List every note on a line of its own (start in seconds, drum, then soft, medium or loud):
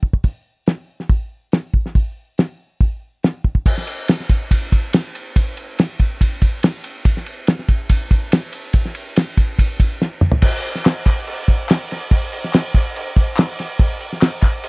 0.03 kick medium
0.13 kick medium
0.24 kick medium
0.24 open hi-hat soft
0.66 snare medium
0.66 open hi-hat soft
1.00 snare soft
1.09 kick medium
1.09 open hi-hat soft
1.52 snare loud
1.52 open hi-hat soft
1.74 kick medium
1.86 snare soft
1.95 kick medium
1.95 open hi-hat soft
2.38 snare medium
2.38 open hi-hat soft
2.81 kick medium
2.81 open hi-hat soft
3.23 snare loud
3.23 open hi-hat soft
3.44 kick medium
3.55 kick medium
3.66 kick medium
3.66 crash loud
3.78 snare soft
3.87 ride medium
4.08 snare loud
4.08 ride medium
4.20 snare soft
4.29 kick medium
4.29 ride medium
4.51 kick medium
4.51 ride medium
4.72 kick medium
4.72 ride medium
4.93 snare loud
4.93 ride medium
5.15 ride medium
5.36 kick medium
5.36 ride medium
5.57 ride medium
5.78 snare loud
5.78 ride medium
5.99 kick medium
5.99 ride medium
6.21 kick medium
6.21 ride medium
6.42 kick medium
6.42 ride medium
6.63 snare loud
6.63 ride medium
6.84 ride medium
7.05 kick medium
7.05 ride medium
7.17 snare soft
7.26 ride medium
7.47 snare loud
7.47 ride medium
7.59 snare soft
7.68 kick medium
7.68 ride medium
7.89 kick medium
7.89 ride medium
8.11 kick medium
8.11 ride medium
8.32 snare loud
8.32 ride loud
8.53 ride medium
8.73 kick loud
8.73 ride medium
8.85 snare soft
8.95 ride medium
9.16 snare loud
9.16 ride medium
9.37 kick medium
9.37 ride medium
9.59 kick medium
9.59 ride medium
9.80 kick medium
9.80 ride medium
10.02 snare medium
10.21 mid tom medium
10.32 floor tom medium
10.42 kick loud
10.42 crash loud
10.42 crash medium
10.63 crash soft
10.75 snare soft
10.85 snare loud
10.85 clap medium
10.85 crash medium
11.06 kick medium
11.06 clap medium
11.06 crash medium
11.27 crash medium
11.48 kick medium
11.48 crash medium
11.69 snare loud
11.69 clap loud
11.69 crash medium
11.91 snare soft
11.91 crash medium
12.11 kick loud
12.11 crash medium
12.33 crash medium
12.44 snare soft
12.53 snare loud
12.53 clap medium
12.53 crash medium
12.74 kick medium
12.74 crash medium
12.96 crash medium
13.16 kick medium
13.16 crash medium
13.36 snare loud
13.36 clap loud
13.36 crash medium
13.59 snare soft
13.59 crash medium
13.79 kick loud
13.79 crash medium
14.00 crash medium
14.13 snare soft
14.21 snare loud
14.21 clap loud
14.21 crash medium
14.42 kick medium
14.42 clap medium
14.42 crash soft
14.63 crash medium